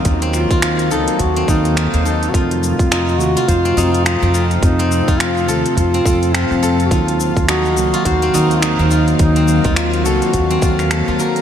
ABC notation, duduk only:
X:1
M:4/4
L:1/16
Q:"Swing 16ths" 1/4=105
K:none
V:1 name="Duduk"
z2 F4 _E2 _G2 E4 E3/2 G/2 | F6 _G2 F4 F3 z | _E4 F4 F4 C3 z/2 _G/2 | F4 _G4 G4 _E3 z |
_E4 F2 _G6 z4 |]